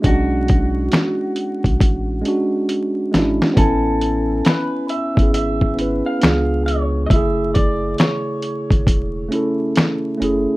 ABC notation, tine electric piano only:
X:1
M:4/4
L:1/16
Q:"Swing 16ths" 1/4=68
K:Bdor
V:1 name="Tine electric piano"
[G,CDF]6- [G,CDF] z3 [G,CDF]4 [G,CDE]2 | [B,CEg]6 z [B,CEG]3 [B,CEB]2 [B,D^EG]4 | [C,A,EG]6- [C,A,EG] z3 [A,CEA]4 [A,CEG]2 |]